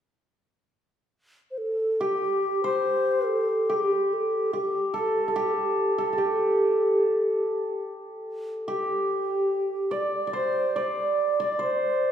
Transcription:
1.51 C5
1.58 A4
2.00 G4
2.64 C5
3.27 A4
3.70 G4
4.13 A4
4.52 G4
4.94 A4
5.28 A4
5.35 G4
5.49 A4
5.54 G4
5.97 A4
6.13 A4
6.17 G4
8.67 G4
9.91 D5
10.27 D5
10.33 C5
10.76 D5
11.40 D5
11.59 C5

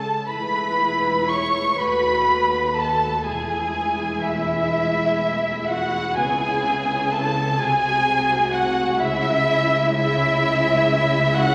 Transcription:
Already playing: A4 A5
0.29 E1 E2 G#3 E4 B4 B5
1.29 C#5 C#6
1.77 D#2 A3 F#4 B4 B5
2.77 A4 A5
3.25 E1 E2 G#3 E4 G#4 G#5
4.23 E4 E5
5.68 F#4 F#5
6.18 C#2 C#3 B3 G#4 G#5
7.13 A4 A5
7.58 C2 C3 G#3 F#4 G#4 G#5
8.52 F#4 F#5
9.01 C#2 C#3 E4 E5
9.97 E4 E5
11.37 F#4 F#5

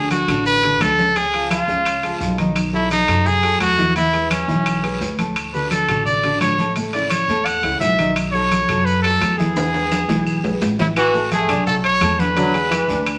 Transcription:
Already playing: D2 D3 D4 F#4 G#4
0.11 F#4, high conga, high timbale, short guiro, maracas
0.28 A1 D3 D4 F#4, high conga, low conga, high timbale, short guiro, claves, maracas
0.46 B4, high conga, long guiro, maracas
0.63 D3 D4 F#4, high conga, high timbale, maracas
0.80 C#2 A4, high conga, high timbale, low timbale, short guiro, claves, maracas
0.98 C#3 C#4 C#5, high conga, short guiro, maracas
1.16 C#3 C#4 G#4 C#5, high conga, high timbale, long guiro, maracas
1.33 F3 F4 G#4, high conga, high timbale, maracas
1.51 F4, high conga, high timbale, short guiro, claves, maracas
1.68 C#2 C#3 C#4 C#5, short guiro, maracas
1.85 high conga, high timbale, long guiro, claves, maracas
2.03 C#2 F3 F4 G#4, high conga, high timbale, maracas
2.20 B1, high conga, short guiro, maracas
2.38 D#3 D#4 D#5, high conga, high timbale, short guiro, maracas
2.56 high conga, high timbale, long guiro, claves, maracas
2.73 F#3 E4 F#4 A4, high conga, maracas
2.91 D#4, high conga, high timbale, short guiro, maracas
3.08 F#2 F#3 F#4 A4, high conga, low conga, high timbale, short guiro, claves, maracas
3.26 G#4, high conga, low conga, long guiro, maracas
3.43 F#3 F#4 A4, high conga, high timbale, maracas
3.60 E2 F#4, high conga, high timbale, low timbale, short guiro, claves, maracas
3.78 E3 E4 E5, high conga, short guiro, maracas
3.96 E3 E4 E5, high timbale, long guiro, maracas
4.13 G#3 G#4 B4, high conga, high timbale, maracas
4.30 C#4, high conga, high timbale, short guiro, claves, maracas
4.48 B1 E3 E4 E5, high conga, short guiro, maracas
4.66 high conga, high timbale, long guiro, claves, maracas
4.83 G#3 G#4 B4, high conga, high timbale, maracas
5.01 D2, high conga, low timbale, short guiro, maracas
5.19 A2 A3 A4, high conga, high timbale, short guiro, maracas
5.36 high conga, high timbale, long guiro, claves, maracas
5.54 D3 D4 F#4 B4, high conga, maracas
5.71 A4, high conga, high timbale, short guiro, maracas
5.88 A1 D3 D4 F#4, high conga, low conga, high timbale, short guiro, claves, maracas
6.06 D5, high conga, low conga, long guiro, maracas
6.24 D3 D4 F#4, high conga, high timbale, maracas
6.41 A1 C#5, high conga, high timbale, low timbale, short guiro, claves, maracas
6.58 A2 A3 A4, high conga, short guiro, maracas
6.76 A2 A3 A4, high conga, high timbale, long guiro, maracas
6.93 C#3 C#4 E4 D5, high conga, high timbale, maracas
7.10 C#5, high conga, high timbale, short guiro, claves, maracas
7.28 E2 A2 A3 A4, high conga, short guiro, maracas
7.45 F#5, high conga, high timbale, long guiro, claves, maracas
7.63 C#2 C#3 C#4 E4, high conga, high timbale, maracas
7.80 B1 E5, high conga, low timbale, short guiro, maracas
7.98 D#3 D#4 D#5, high conga, high timbale, short guiro, maracas
8.16 high conga, high timbale, long guiro, claves, maracas
8.32 F#3 F#4 A4 C#5, high conga, maracas
8.51 high conga, high timbale, short guiro, maracas
8.68 F#2 F#3 F#4 A4, high conga, low conga, high timbale, short guiro, claves, maracas
8.85 B4, high conga, long guiro, maracas
9.02 F#3 F#4 A4, high conga, high timbale, maracas
9.21 E2, high conga, high timbale, low timbale, short guiro, claves, maracas
9.38 E3 E4 G#4 E5, high conga, short guiro, maracas
9.56 E3 E4 E5, high conga, high timbale, long guiro, maracas
9.74 G#3 G#4 B4, high conga, high timbale, maracas
9.91 high conga, high timbale, short guiro, claves, maracas
10.08 B1 E3 E4 E5, high conga, low timbale, short guiro, maracas
10.27 high conga, long guiro, claves, maracas
10.43 B1 G#3 G#4 B4, high conga, low timbale, maracas
10.61 A1, high conga, low timbale, short guiro, maracas
10.79 E3 E4 E5, high conga, low timbale, short guiro, maracas
10.96 E3 F#4, high conga, high timbale, long guiro, claves, maracas
11.14 A3 A4 A5, high conga, maracas
11.31 A3 G#4, high conga, high timbale, short guiro, maracas
11.48 B1 D4 D5 D6, high conga, low conga, high timbale, short guiro, claves, maracas
11.66 F#3 F#4 A4 F#5, high conga, low conga, long guiro, maracas
11.84 C#5, high conga, high timbale, maracas
12.01 E2 A3 A4 A5, high conga, high timbale, low timbale, short guiro, claves, maracas
12.19 D3 B4, high conga, short guiro, maracas
12.36 D3 F#3 D4 D5, high conga, high timbale, long guiro, maracas
12.54 G#3 G#4 G#5, high conga, high timbale, maracas
12.71 E3, high conga, high timbale, short guiro, claves, maracas
12.88 D2 D4 D5 D6, high conga, short guiro, maracas
13.06 high conga, high timbale, long guiro, claves, maracas

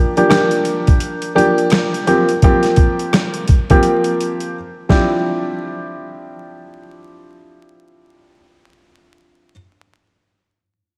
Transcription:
Already playing: F3 A#3 D4 G4
0.17 F3 A#3 D4 G4, closed hi-hat
0.29 F3 A#3 D4 G4, cross-stick, snare, closed hi-hat
0.51 closed hi-hat
0.65 closed hi-hat
0.87 kick, closed hi-hat
1.00 closed hi-hat
1.22 closed hi-hat
1.35 F3 A#3 D4 G4, closed hi-hat
1.58 closed hi-hat
1.70 cross-stick, snare, closed hi-hat
1.94 closed hi-hat
2.07 F3 A#3 C4 G4, closed hi-hat
2.29 closed hi-hat
2.42 F3 A#3 C4 G4, kick, closed hi-hat
2.63 snare, closed hi-hat
2.76 kick, closed hi-hat
2.99 closed hi-hat
3.13 cross-stick, snare, closed hi-hat
3.34 closed hi-hat
3.48 kick, closed hi-hat
3.70 F3 A#3 C4 G4, kick, closed hi-hat
3.83 closed hi-hat
4.04 closed hi-hat
4.21 closed hi-hat
4.40 closed hi-hat
4.89 F3 C4 D4 E4 G4, kick, snare

